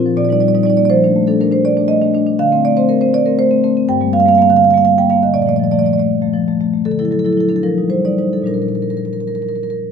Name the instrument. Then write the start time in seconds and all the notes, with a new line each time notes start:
marimba
Already playing: A#4
0.06 F3
0.17 A#2 D5
0.25 D5
0.29 G3 D#4 D5
0.40 G3 D5
0.48 D5
0.54 G3 D#4 D5
0.63 G3 D#4 D5
0.70 D5
0.77 A#3 D5
0.85 D5
0.90 F3 C5
1.04 A3 D4
1.16 A3
1.27 A3 D4 A4
1.41 A3 D4 A#4
1.52 D4 C5
1.65 D5
1.77 A3 D4
1.88 A3 D#5
2.01 A3 D4
2.14 A3 D4
2.27 D4
2.39 D3 F5
2.52 A3 C4
2.65 A3 D5
2.77 A3 C4 C5
2.89 A3 C4 A#4
3.01 C4 C5
3.14 D5
3.26 A3 C4 A#4
3.39 A3 C5
3.51 A3 C4
3.64 A3 C4
3.77 C4
3.89 G2 G5
4.01 G3 A#3
4.13 G3 F5
4.20 F5
4.26 G3 A#3 F5
4.35 G3 A#3 F5
4.42 F5
4.49 D3 F5
4.56 F5
4.64 F5
4.71 G3 A#3 F5
4.77 F5
4.85 G3 F5
4.98 G3 A#3 G5
5.10 G3 A#3 F5
5.23 D3 D#5
5.34 A#2 D5
5.42 D5
5.46 F3 A3 D5
5.56 F3 D5
5.64 D5
5.71 F3 A3 D5
5.79 D5
5.84 F3 A3 D5
5.93 D5
5.98 A3 D5
6.22 F3 A3
6.34 F3
6.48 F3 A3
6.61 F3 A3
6.74 A3
6.85 D3 A4
6.92 A4
6.99 F#3 E4 A4
7.05 A4
7.11 F#3 A4
7.19 A4
7.24 F#3 E4 A4
7.33 A4
7.37 F#3 E4 A4
7.49 D4 A4
7.56 A4
7.63 F3 A#4
7.78 G3 D#4
7.90 G3 C5
8.05 G3 D#4 D5
8.18 G3 D#4 C5
8.33 D#4 A4
8.43 A#2 G3 D4
8.47 A#4
8.54 A#4
8.62 A#4
8.68 A#4
8.75 A#4
8.82 A#4
8.90 A#4
8.97 A#4
9.05 A#4
9.13 A#4
9.20 A#4
9.28 A#4
9.35 A#4
9.42 A#4
9.49 A#4
9.55 A#4
9.63 A#4
9.70 A#4